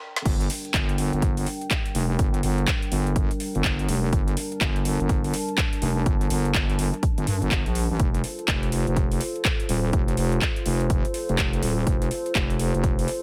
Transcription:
0.00 0.21 G3 medium
0.00 0.21 D4 medium
0.00 0.21 A#4 medium
0.00 0.21 G5 medium
0.16 snare medium
0.25 0.48 G1 loud
0.25 7.96 G3 medium
0.25 7.96 D4 medium
0.25 7.96 A#4 medium
0.25 4.09 G5 medium
0.25 kick loud
0.25 closed hi-hat medium
0.25 crash loud
0.41 closed hi-hat medium
0.50 open hi-hat loud
0.65 closed hi-hat soft
0.74 1.11 G1 loud
0.74 kick loud
0.74 clap loud
0.74 closed hi-hat medium
0.89 closed hi-hat medium
0.98 open hi-hat loud
1.13 1.45 G1 medium
1.13 closed hi-hat soft
1.22 kick loud
1.22 closed hi-hat medium
1.37 open hi-hat medium
1.46 open hi-hat loud
1.61 closed hi-hat soft
1.71 kick loud
1.71 clap loud
1.71 closed hi-hat medium
1.86 closed hi-hat medium
1.95 2.18 F1 loud
1.95 open hi-hat loud
2.19 2.42 G1 loud
2.19 kick loud
2.19 closed hi-hat medium
2.34 closed hi-hat medium
2.43 2.66 G1 medium
2.43 open hi-hat loud
2.58 closed hi-hat soft
2.67 kick loud
2.67 clap loud
2.67 closed hi-hat medium
2.82 closed hi-hat medium
2.92 3.28 G1 medium
2.92 open hi-hat loud
3.07 closed hi-hat soft
3.16 kick loud
3.16 closed hi-hat medium
3.31 closed hi-hat medium
3.40 open hi-hat loud
3.55 3.87 G1 loud
3.55 closed hi-hat soft
3.64 kick loud
3.64 clap loud
3.64 closed hi-hat medium
3.79 closed hi-hat medium
3.89 4.11 F1 loud
3.89 open hi-hat loud
4.13 4.35 G1 loud
4.13 7.96 A5 medium
4.13 kick loud
4.13 closed hi-hat medium
4.28 closed hi-hat medium
4.37 open hi-hat loud
4.52 closed hi-hat soft
4.61 4.98 G1 loud
4.61 kick loud
4.61 clap loud
4.61 closed hi-hat medium
4.76 closed hi-hat medium
4.85 open hi-hat loud
5.00 5.32 G1 medium
5.00 closed hi-hat soft
5.09 kick loud
5.09 closed hi-hat medium
5.24 open hi-hat medium
5.34 open hi-hat loud
5.49 closed hi-hat soft
5.58 kick loud
5.58 clap loud
5.58 closed hi-hat medium
5.73 closed hi-hat medium
5.82 6.05 F1 medium
5.82 open hi-hat loud
6.06 6.29 G1 loud
6.06 kick loud
6.06 closed hi-hat medium
6.21 closed hi-hat medium
6.30 6.53 G1 loud
6.30 open hi-hat loud
6.45 closed hi-hat soft
6.54 6.91 G1 loud
6.54 kick loud
6.54 clap loud
6.54 closed hi-hat medium
6.70 closed hi-hat medium
6.79 open hi-hat loud
6.94 closed hi-hat soft
7.03 kick loud
7.03 closed hi-hat medium
7.18 7.26 G1 medium
7.18 closed hi-hat medium
7.27 7.40 G2 medium
7.27 open hi-hat loud
7.42 7.64 G1 medium
7.42 closed hi-hat soft
7.51 kick loud
7.51 clap loud
7.51 closed hi-hat medium
7.66 7.88 A#1 loud
7.66 closed hi-hat medium
7.75 open hi-hat loud
7.90 7.98 A1 loud
8.00 8.22 F1 loud
8.00 13.22 F4 medium
8.00 13.22 A4 medium
8.00 13.22 C5 medium
8.00 kick loud
8.00 closed hi-hat medium
8.15 closed hi-hat medium
8.24 open hi-hat loud
8.39 closed hi-hat soft
8.48 8.85 F1 loud
8.48 kick loud
8.48 clap loud
8.48 closed hi-hat medium
8.63 closed hi-hat medium
8.72 open hi-hat loud
8.87 9.19 F1 loud
8.87 closed hi-hat soft
8.96 kick loud
8.96 closed hi-hat medium
9.12 open hi-hat medium
9.21 open hi-hat loud
9.36 closed hi-hat soft
9.45 kick loud
9.45 clap loud
9.45 closed hi-hat medium
9.60 closed hi-hat soft
9.69 9.92 D#1 loud
9.69 open hi-hat loud
9.93 10.16 F1 loud
9.93 kick loud
9.93 closed hi-hat medium
10.08 closed hi-hat medium
10.17 10.40 F1 loud
10.17 open hi-hat loud
10.32 closed hi-hat soft
10.41 kick loud
10.41 clap loud
10.41 closed hi-hat medium
10.56 closed hi-hat medium
10.66 11.03 F1 medium
10.66 open hi-hat loud
10.81 closed hi-hat soft
10.90 kick loud
10.90 closed hi-hat medium
11.05 closed hi-hat medium
11.14 open hi-hat loud
11.29 11.61 F1 loud
11.29 closed hi-hat soft
11.38 kick loud
11.38 clap loud
11.38 closed hi-hat medium
11.53 closed hi-hat medium
11.63 11.85 D#1 loud
11.63 open hi-hat loud
11.87 12.10 F1 loud
11.87 kick loud
11.87 closed hi-hat medium
12.02 closed hi-hat medium
12.11 open hi-hat loud
12.26 closed hi-hat soft
12.35 12.72 F1 loud
12.35 kick loud
12.35 clap loud
12.35 closed hi-hat medium
12.50 closed hi-hat medium
12.59 open hi-hat loud
12.74 13.06 F1 loud
12.74 closed hi-hat soft
12.84 kick loud
12.84 closed hi-hat medium
12.99 open hi-hat medium
13.08 open hi-hat loud

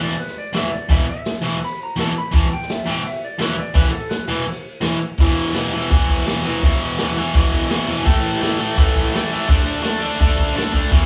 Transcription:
0.00 0.13 E2 medium
0.00 0.14 B2 medium
0.00 0.14 E3 medium
0.00 0.19 D5 loud
0.19 0.36 B4 loud
0.19 crash medium
0.27 snare soft
0.38 0.55 D5 medium
0.53 0.68 E2 medium
0.53 0.69 B2 medium
0.53 0.69 E3 loud
0.53 0.73 E5 medium
0.53 snare loud
0.53 crash medium
0.73 0.90 D5 loud
0.89 1.04 E2 medium
0.89 1.04 B2 loud
0.89 1.04 E3 loud
0.89 1.08 E5 loud
0.89 kick loud
0.89 crash medium
1.09 1.43 E5 loud
1.25 snare loud
1.25 crash medium
1.42 1.57 E2 medium
1.42 1.58 B2 loud
1.42 1.58 E3 loud
1.62 1.81 B5 loud
1.62 crash medium
1.83 1.99 A#5 loud
1.96 2.11 E2 medium
1.96 2.12 B2 loud
1.96 2.12 E3 medium
1.96 2.16 A5 loud
1.96 snare loud
1.96 crash medium
2.18 2.34 B5 loud
2.32 2.47 E2 loud
2.32 2.47 B2 medium
2.32 2.48 E3 loud
2.32 kick loud
2.32 crash medium
2.36 2.52 A5 loud
2.53 2.70 G5 loud
2.62 snare soft
2.69 2.88 E5 loud
2.69 snare loud
2.69 crash medium
2.86 3.01 E2 medium
2.86 3.01 B2 loud
2.86 3.01 E3 loud
2.90 3.06 G5 loud
3.05 3.23 E5 medium
3.05 crash medium
3.25 3.41 D5 loud
3.38 3.54 E2 loud
3.38 3.54 B2 loud
3.38 3.55 E3 loud
3.38 snare loud
3.38 crash medium
3.42 3.59 B4 loud
3.60 3.77 D5 loud
3.74 3.90 E2 medium
3.74 3.90 B2 medium
3.74 3.90 E3 loud
3.74 3.91 B4 loud
3.74 kick loud
3.74 crash medium
3.91 4.10 A4 loud
4.09 4.46 B4 loud
4.09 snare loud
4.09 crash medium
4.28 4.44 E2 medium
4.28 4.44 B2 loud
4.28 4.44 E3 loud
4.46 crash medium
4.81 4.97 E2 loud
4.81 4.98 B2 loud
4.81 4.98 E3 loud
4.81 snare loud
4.81 crash medium
5.18 5.54 E2 loud
5.18 5.53 B2 loud
5.18 5.55 E3 loud
5.18 kick loud
5.18 crash loud
5.18 crash medium
5.36 crash medium
5.46 snare soft
5.54 5.72 E2 medium
5.54 5.73 B2 medium
5.54 5.74 E3 medium
5.54 snare loud
5.54 crash medium
5.73 5.89 E2 medium
5.73 5.90 B2 medium
5.73 5.92 E3 medium
5.73 crash medium
5.91 6.25 E2 medium
5.91 6.25 B2 medium
5.91 6.26 E3 loud
5.91 kick loud
5.91 crash medium
6.09 kick medium
6.09 crash medium
6.26 6.44 E2 medium
6.26 6.44 B2 medium
6.26 6.46 E3 medium
6.26 snare loud
6.26 crash medium
6.45 6.62 E2 medium
6.45 6.63 B2 medium
6.45 6.64 E3 medium
6.45 crash medium
6.63 6.98 E2 medium
6.63 6.98 B2 loud
6.63 7.00 E3 loud
6.63 kick loud
6.63 crash medium
6.81 crash medium
6.98 7.16 E2 medium
6.98 7.16 B2 medium
6.98 7.18 E3 loud
6.98 snare loud
6.98 crash medium
7.16 7.33 E2 medium
7.16 7.34 B2 medium
7.16 7.35 E3 medium
7.16 crash medium
7.34 7.70 E2 loud
7.34 7.70 B2 loud
7.34 7.71 E3 loud
7.34 kick loud
7.34 crash medium
7.53 kick medium
7.53 crash medium
7.70 7.87 E2 medium
7.70 7.87 B2 medium
7.70 7.87 E3 medium
7.70 snare loud
7.70 crash medium
7.88 8.05 E2 medium
7.88 8.04 B2 medium
7.88 8.05 E3 medium
7.88 crash medium
8.04 8.40 A2 loud
8.04 8.40 E3 loud
8.04 8.42 A3 loud
8.04 kick loud
8.04 crash medium
8.25 crash medium
8.35 snare soft
8.41 8.59 A2 medium
8.41 8.58 E3 medium
8.41 8.60 A3 medium
8.41 snare loud
8.41 crash medium
8.60 8.76 A2 medium
8.60 8.76 E3 medium
8.60 8.77 A3 loud
8.60 crash medium
8.77 9.12 A2 loud
8.77 9.13 E3 loud
8.77 9.13 A3 loud
8.77 kick loud
8.77 crash medium
8.96 kick medium
8.96 crash medium
9.13 9.30 A2 medium
9.13 9.30 E3 medium
9.13 9.31 A3 medium
9.13 snare loud
9.13 crash medium
9.25 snare soft
9.31 9.47 A2 medium
9.31 9.47 E3 medium
9.31 9.46 A3 loud
9.31 crash medium
9.47 9.81 D3 medium
9.47 9.81 A3 medium
9.47 9.82 D4 loud
9.47 kick loud
9.47 crash medium
9.66 crash medium
9.82 10.00 D3 medium
9.82 10.02 A3 loud
9.82 10.02 D4 medium
9.82 snare loud
9.82 crash medium
10.01 10.18 D3 medium
10.01 10.20 A3 medium
10.01 10.21 D4 medium
10.01 crash medium
10.20 10.54 D3 medium
10.20 10.55 A3 medium
10.20 10.55 D4 loud
10.20 kick loud
10.20 crash medium
10.39 kick medium
10.39 crash medium
10.55 10.72 D3 medium
10.55 10.73 A3 medium
10.55 10.72 D4 medium
10.55 snare loud
10.55 crash medium
10.67 snare soft
10.73 10.91 D3 medium
10.73 10.91 A3 medium
10.73 10.91 D4 medium
10.73 kick medium
10.73 crash medium
10.91 11.06 E2 medium
10.91 11.06 B2 medium
10.91 11.06 E3 medium
10.91 kick loud
10.91 crash medium

